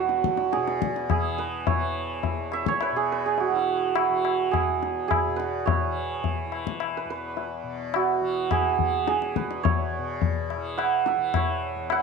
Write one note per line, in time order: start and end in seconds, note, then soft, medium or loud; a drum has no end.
0.00 2.32 E2 medium
0.00 0.56 B2 medium
0.00 1.16 E3 medium
0.00 3.18 F#4 medium
0.00 0.12 G#4 medium
0.00 1.38 B4 medium
0.00 0.94 C#5 medium
0.09 tabla te medium
0.24 tabla ke medium
0.37 tabla te medium
0.52 2.91 B2 medium
0.52 1.10 G#4 medium
0.52 tabla te medium
0.68 tabla te medium
0.82 tabla ke medium
0.96 tabla te medium
1.10 2.96 G#4 medium
1.10 tabla na medium
1.10 tabla ge medium
1.16 1.74 E3 medium
1.38 2.82 B4 medium
1.38 tabla te medium
1.67 2.68 C#5 medium
1.67 tabla tin loud
1.67 tabla ge medium
1.74 3.50 E3 medium
2.23 tabla tin medium
2.23 tabla ge medium
2.32 4.68 E2 medium
2.52 4.83 E5 loud
2.52 tabla na medium
2.66 5.25 C#5 loud
2.66 tabla ke medium
2.81 3.12 B4 medium
2.81 tabla na medium
2.92 5.27 B2 medium
2.96 3.25 G#4 medium
3.12 5.36 B4 medium
3.26 4.51 G#4 medium
3.38 3.96 F#4 medium
3.38 tabla tin medium
3.50 4.10 E3 medium
3.55 7.04 E4 medium
3.95 7.20 F#4 medium
3.95 tabla na medium
4.10 5.87 E3 medium
4.25 tabla na medium
4.51 5.08 G#4 medium
4.51 tabla na medium
4.51 tabla ge medium
4.69 7.05 E2 medium
4.83 tabla te medium
5.08 8.13 G#4 medium
5.08 tabla na medium
5.08 tabla ge medium
5.27 7.63 B2 medium
5.36 6.97 B4 medium
5.36 tabla te medium
5.66 8.22 C#5 medium
5.66 tabla tin loud
5.66 tabla ge loud
5.87 6.46 E3 medium
6.24 tabla tin medium
6.24 tabla ge medium
6.46 8.21 E3 medium
6.52 tabla na medium
6.67 tabla ke medium
6.80 tabla na medium
6.97 7.10 B4 medium
7.05 9.39 E2 medium
7.10 9.36 B4 medium
7.37 tabla tin medium
7.63 9.98 B2 medium
7.94 11.20 F#4 medium
7.94 tabla na medium
8.21 8.80 E3 medium
8.51 9.07 G#4 medium
8.51 tabla na medium
8.51 tabla ge medium
8.79 10.57 E3 medium
8.79 tabla ge soft
9.08 12.02 G#4 medium
9.08 tabla te medium
9.22 tabla te medium
9.36 11.75 E2 medium
9.36 12.02 B4 medium
9.36 tabla ke medium
9.51 tabla te medium
9.63 11.36 C#5 medium
9.63 tabla tin loud
9.63 tabla ge medium
9.99 12.02 B2 medium
10.22 tabla tin medium
10.22 tabla ge medium
10.50 tabla na medium
10.57 11.16 E3 medium
10.78 11.92 F#5 loud
10.78 tabla na medium
11.06 12.02 E5 medium
11.06 tabla te medium
11.16 12.02 E3 medium
11.34 12.02 C#5 medium
11.34 tabla na medium
11.34 tabla ge medium
11.75 12.02 E2 medium
11.90 12.02 F#5 loud
11.90 tabla na medium